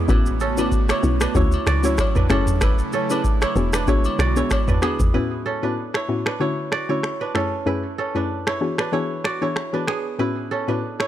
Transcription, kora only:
0.00 1.65 B3 medium
0.00 0.48 D4 medium
0.00 0.61 F#4 medium
0.00 0.47 G#4 medium
0.09 0.90 E4 medium
0.09 0.58 B4 medium
0.41 0.65 C#4 medium
0.41 1.73 A4 medium
0.58 0.96 D4 medium
0.58 1.21 B4 medium
0.90 1.36 E4 medium
0.90 1.28 C#5 medium
1.21 1.42 D4 medium
1.21 2.16 B4 medium
1.36 1.85 E4 medium
1.36 1.73 C#5 medium
1.67 3.14 F#4 medium
1.67 1.91 D5 medium
1.85 2.62 E4 medium
1.85 2.23 C#5 medium
2.16 2.37 D4 medium
2.16 2.62 B4 medium
2.31 2.94 C#4 medium
2.31 2.93 A4 medium
2.62 3.43 E4 medium
2.62 3.10 B4 medium
2.93 3.18 C#4 medium
2.93 4.25 A4 medium
3.11 3.48 D4 medium
3.11 3.73 B4 medium
3.42 3.88 E4 medium
3.42 3.81 C#5 medium
3.74 3.94 D4 medium
3.74 4.68 B4 medium
3.88 4.37 E4 medium
3.88 4.26 C#5 medium
4.20 5.67 F#4 medium
4.20 4.43 D5 medium
4.37 5.15 E4 medium
4.37 4.75 C#5 medium
4.68 5.52 D4 medium
4.68 5.14 B4 medium
4.83 6.70 B3 medium
4.83 5.52 G#4 medium
5.14 5.95 E4 medium
5.14 5.63 B4 medium
5.46 5.70 C#4 medium
5.46 6.77 A4 medium
5.63 6.01 D4 medium
5.63 6.26 B4 medium
5.95 6.41 E4 medium
5.95 6.33 C#5 medium
6.26 6.46 D4 medium
6.26 7.21 B4 medium
6.40 6.90 E4 medium
6.40 6.78 C#5 medium
6.72 8.19 F#4 medium
6.72 6.95 D5 medium
6.89 7.67 E4 medium
6.89 7.28 C#5 medium
7.21 7.42 D4 soft
7.21 7.66 B4 medium
7.35 7.99 C#4 medium
7.35 7.98 A4 medium
7.67 8.48 E4 medium
7.67 8.15 B4 medium
7.98 8.22 C#4 medium
7.98 9.30 A4 medium
8.15 8.53 D4 medium
8.15 8.78 B4 medium
8.47 8.93 E4 medium
8.47 8.85 C#5 medium
8.79 8.99 D4 medium
8.79 9.73 B4 medium
8.93 9.42 E4 medium
8.93 9.31 C#5 medium
9.25 10.72 F#4 medium
9.25 9.48 D5 medium
9.42 10.20 E4 medium
9.42 9.80 C#5 medium
9.74 10.58 D4 soft
9.74 10.19 B4 medium
9.88 11.08 B3 medium
9.88 10.57 G#4 medium
10.19 11.00 E4 medium
10.19 10.68 B4 medium
10.51 10.75 C#4 medium
10.51 11.08 A4 medium
10.68 11.06 D4 medium
10.68 11.08 B4 medium
11.00 11.08 E4 medium
11.00 11.08 C#5 medium

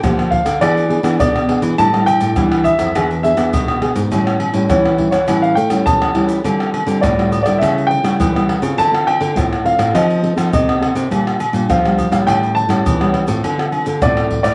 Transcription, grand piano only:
0.00 0.33 G5 loud
0.30 0.58 F5 medium
0.61 1.18 D5 medium
1.19 1.60 D5 medium
1.78 2.05 A5 loud
2.06 2.61 G5 loud
2.64 3.19 E5 loud
3.23 3.78 E5 loud
4.70 5.10 C#5 medium
5.11 5.40 C#5 medium
5.42 5.58 F5 loud
5.55 5.84 G5 medium
5.86 6.27 A5 loud
7.01 7.41 D5 medium
7.43 7.58 D5 medium
7.58 7.87 E5 medium
7.87 8.43 G5 loud
8.78 9.05 A5 loud
9.07 9.62 G5 loud
9.66 9.96 F5 medium
9.95 10.52 D#5 medium
10.53 10.94 D#5 medium
11.70 12.10 F5 medium
12.12 12.17 F5 medium
12.27 12.54 G5 loud
12.55 13.10 A5 loud
14.03 14.42 D5 medium
14.43 14.54 D5 medium

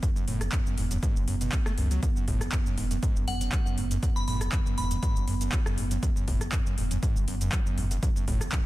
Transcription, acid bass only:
0.03 0.10 F#2 loud
0.16 0.26 F#2 medium
0.28 0.43 A2 loud
0.41 0.47 E2 loud
0.53 0.60 F#2 loud
0.66 0.76 F#2 loud
0.78 0.85 G#2 medium
0.91 0.97 F#2 loud
1.03 1.18 G#2 loud
1.16 1.26 F#2 medium
1.28 1.35 F#2 loud
1.41 1.51 B2 medium
1.53 1.57 F#2 medium
1.66 1.72 A3 loud
1.78 1.89 F#2 loud
1.91 2.01 F#3 medium
2.03 2.10 F#2 loud
2.16 2.26 F#2 medium
2.28 2.43 A2 loud
2.41 2.47 E2 loud
2.53 2.60 F#2 loud
2.66 2.76 F#2 loud
2.78 2.85 G#2 medium
2.91 2.97 F#2 loud
3.03 3.18 G#2 loud
3.16 3.26 F#2 medium
3.28 3.35 F#2 loud
3.41 3.51 F#2 loud
3.53 3.60 F#3 medium
3.66 3.79 F#2 loud
3.78 3.85 A2 medium
3.91 3.97 F#2 medium
4.03 4.10 F#2 loud
4.16 4.26 F#2 medium
4.28 4.43 A2 loud
4.41 4.47 E2 loud
4.53 4.60 F#2 loud
4.66 4.76 F#2 loud
4.78 4.85 G#2 medium
4.91 4.97 F#2 loud
5.03 5.18 G#2 loud
5.16 5.26 F#2 medium
5.28 5.35 F#2 loud
5.41 5.51 F#2 loud
5.53 5.60 F#3 medium
5.66 5.79 F#2 loud
5.78 5.85 A2 medium
5.91 5.97 F#2 loud
6.03 6.10 F#2 loud
6.16 6.26 F#2 medium
6.28 6.43 A2 loud
6.41 6.47 E2 loud
6.53 6.60 F#2 loud
6.66 6.76 F#2 loud
6.78 6.85 G#2 medium
6.91 6.97 F#2 loud
7.03 7.18 G#2 loud
7.16 7.26 F#2 medium
7.28 7.35 F#2 loud
7.41 7.51 F#2 medium
7.53 7.60 F#3 medium
7.66 7.79 F#2 medium
7.78 7.85 A2 medium
7.91 7.97 F#2 loud
8.03 8.10 F#2 loud
8.16 8.26 F#2 medium
8.28 8.43 A2 loud
8.41 8.47 E2 loud
8.53 8.60 F#2 loud

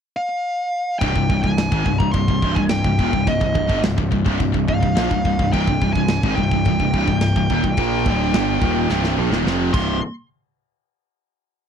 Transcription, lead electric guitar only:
0.16 0.99 F5 medium
0.99 1.40 G5 loud
1.43 2.02 G#5 medium
1.98 2.11 A#5 loud
2.11 2.55 C6 loud
2.55 2.60 G#5 medium
2.70 3.29 G5 loud
3.28 3.80 D#5 medium
4.69 5.52 F5 loud
5.53 5.93 G5 loud
5.93 6.34 G#5 loud
6.36 9.41 G5 loud
9.73 10.00 C6 medium

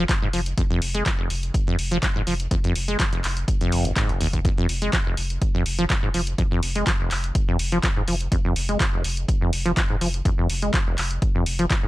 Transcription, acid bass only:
0.09 0.13 F3 medium
0.22 0.28 G#2 medium
0.33 0.40 F3 medium
0.58 0.62 F2 loud
0.70 0.80 F2 loud
0.95 1.04 G#3 medium
1.06 1.10 F3 medium
1.19 1.28 F1 medium
1.67 1.77 F2 loud
1.91 1.98 F3 loud
2.03 2.07 F3 medium
2.16 2.22 G#2 medium
2.27 2.34 F3 medium
2.51 2.55 F2 loud
2.64 2.73 F2 loud
2.88 2.98 G#3 medium
3.00 3.04 F3 medium
3.12 3.22 F1 medium
3.61 3.86 F2 loud
3.85 3.91 F1 loud
3.96 4.11 G#2 medium
4.09 4.19 F1 medium
4.21 4.28 D#2 loud
4.33 4.40 D#2 medium
4.45 4.49 F2 loud
4.58 4.67 F2 loud
4.82 4.91 G#3 medium
4.93 4.97 F3 medium
5.06 5.15 F1 medium
5.54 5.64 F2 loud
5.79 5.85 F3 loud
5.90 5.94 F3 medium
6.03 6.09 G#2 medium
6.14 6.21 F3 medium
6.38 6.43 F2 loud
6.51 6.61 F2 loud
6.75 6.85 G#3 medium
6.87 6.91 F3 medium
7.00 7.09 F1 medium
7.48 7.57 F2 loud
7.72 7.78 F3 loud
7.84 7.88 F3 medium
7.96 8.03 G#2 medium
8.08 8.15 F3 medium
8.32 8.36 F2 loud
8.45 8.54 F2 loud
8.69 8.78 G#3 medium
8.80 8.84 F3 medium
8.93 9.02 F1 medium
9.41 9.51 F2 loud
9.66 9.72 F3 loud
9.77 9.81 F3 medium
9.90 9.96 G#2 medium
10.01 10.08 F3 medium
10.25 10.30 F2 loud
10.38 10.48 F2 loud
10.62 10.72 G#3 medium
10.74 10.78 F3 medium
10.87 10.96 F1 medium
11.35 11.44 F2 loud
11.59 11.65 F3 loud
11.71 11.75 F3 medium
11.83 11.88 G#2 medium

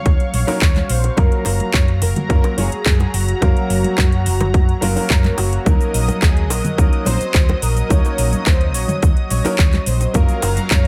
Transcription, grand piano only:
0.00 0.44 F#3 medium
0.00 0.44 A#3 medium
0.00 0.45 C#4 medium
0.00 0.45 D#4 medium
0.00 0.45 A#4 medium
0.47 0.56 F#3 medium
0.47 0.56 A#3 medium
0.47 0.56 C#4 medium
0.47 0.56 D#4 medium
0.47 0.57 A#4 loud
1.17 2.26 F#3 medium
1.17 2.26 A#3 medium
1.17 2.27 C#4 medium
1.17 2.27 F4 medium
1.17 2.27 A#4 medium
2.29 2.54 F#3 medium
2.29 2.54 A#3 medium
2.29 2.54 C#4 medium
2.29 2.55 F4 medium
2.29 2.55 A#4 medium
2.57 2.66 F#3 medium
2.57 2.67 A#3 medium
2.57 2.67 C#4 medium
2.57 2.67 F4 medium
2.57 2.67 C#5 medium
3.41 4.79 F#3 medium
3.41 4.79 A#3 medium
3.41 4.79 C#4 medium
3.41 4.80 A#4 medium
3.41 4.80 F5 medium
4.81 4.93 F#3 medium
4.81 4.93 A#3 medium
4.81 4.93 C#4 medium
4.81 4.93 F4 medium
4.81 4.93 A#4 medium
4.95 5.62 F#3 medium
4.95 5.63 A#3 medium
4.95 5.63 C#4 medium
4.95 5.63 F4 medium
4.95 5.63 A#4 medium
5.65 6.75 F#3 medium
5.65 6.75 A#3 medium
5.65 6.75 C#4 medium
5.65 6.75 D#4 medium
5.65 6.76 A#4 medium
6.78 7.03 F#3 medium
6.78 7.03 A#3 medium
6.78 7.03 C#4 medium
6.78 7.03 D#4 medium
6.78 7.03 A#4 medium
7.06 7.15 F#3 medium
7.06 7.15 A#3 medium
7.06 7.15 C#4 medium
7.06 7.15 D#4 medium
7.06 7.15 C5 medium
7.89 9.41 F#3 medium
7.89 9.41 A#3 medium
7.89 9.42 C#4 medium
7.89 9.42 D#4 medium
7.89 9.42 A#4 medium
9.44 9.53 F#3 medium
9.44 9.53 A#3 medium
9.44 9.53 C#4 medium
9.44 9.54 D#4 medium
9.44 9.54 A#4 loud
10.14 10.87 F#3 medium
10.14 10.87 A#3 medium
10.14 10.87 C#4 medium
10.14 10.87 F4 medium
10.14 10.87 A#4 medium

